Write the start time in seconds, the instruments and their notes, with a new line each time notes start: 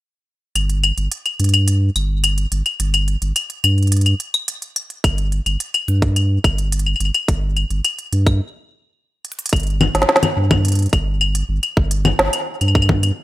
0.55 sub bass G1, closed hi-hat, claves
0.70 closed hi-hat
0.84 closed hi-hat, claves
0.98 sub bass G1, closed hi-hat
1.12 closed hi-hat
1.26 closed hi-hat, claves
1.40 sub bass G2, closed hi-hat
1.44 closed hi-hat
1.49 closed hi-hat
1.54 closed hi-hat, claves
1.68 closed hi-hat
1.96 sub bass G1, closed hi-hat, claves
2.24 closed hi-hat, claves
2.38 closed hi-hat
2.52 sub bass G1, closed hi-hat
2.66 closed hi-hat, claves
2.80 sub bass G1, closed hi-hat
2.94 closed hi-hat, claves
3.08 closed hi-hat
3.22 sub bass G1, closed hi-hat
3.36 closed hi-hat, claves
3.50 closed hi-hat
3.64 sub bass G2, closed hi-hat, claves
3.78 closed hi-hat
3.83 closed hi-hat
3.87 closed hi-hat
3.92 closed hi-hat
3.97 closed hi-hat
4.01 closed hi-hat
4.06 closed hi-hat, claves
4.20 closed hi-hat
4.34 closed hi-hat, claves
4.48 closed hi-hat
4.62 closed hi-hat
4.76 closed hi-hat, claves
4.90 closed hi-hat
5.04 sub bass G1, kick, closed hi-hat, claves
5.18 closed hi-hat
5.32 closed hi-hat
5.46 sub bass G1, closed hi-hat, claves
5.60 closed hi-hat
5.74 closed hi-hat, claves
5.88 sub bass G2, closed hi-hat
6.02 kick, closed hi-hat
6.16 closed hi-hat, claves
6.44 sub bass G1, kick, closed hi-hat, claves
6.58 closed hi-hat
6.72 closed hi-hat
6.79 closed hi-hat
6.86 claves
6.96 claves
7.00 sub bass G1, closed hi-hat
7.05 claves
7.14 closed hi-hat, claves
7.28 sub bass G1, kick, closed hi-hat
7.57 closed hi-hat, claves
7.70 sub bass G1, closed hi-hat
7.85 closed hi-hat, claves
7.99 closed hi-hat
8.13 sub bass G2, closed hi-hat
8.27 kick, closed hi-hat, claves
9.25 closed hi-hat
9.32 closed hi-hat
9.39 closed hi-hat
9.46 closed hi-hat
9.49 sub bass G1, kick, closed hi-hat, claves
9.56 closed hi-hat
9.60 closed hi-hat
9.63 closed hi-hat
9.67 closed hi-hat
9.70 closed hi-hat
9.81 low conga, claves
9.95 sub bass G1, snare, closed hi-hat
10.02 snare
10.09 snare
10.16 snare
10.23 closed hi-hat, low conga, claves
10.37 sub bass G2
10.51 kick, low conga, claves
10.65 closed hi-hat
10.68 closed hi-hat
10.72 closed hi-hat
10.75 closed hi-hat
10.79 closed hi-hat
10.82 closed hi-hat
10.86 closed hi-hat
10.89 sub bass G1, kick, closed hi-hat
10.93 closed hi-hat, claves
11.21 claves
11.35 closed hi-hat
11.49 sub bass G1
11.63 closed hi-hat, claves
11.77 sub bass G1, kick
11.91 closed hi-hat
12.05 low conga, claves
12.19 sub bass G1, snare
12.33 closed hi-hat, claves
12.61 sub bass G2, closed hi-hat, claves
12.68 claves
12.75 kick, claves
12.82 claves
12.89 kick, low conga
13.03 closed hi-hat, claves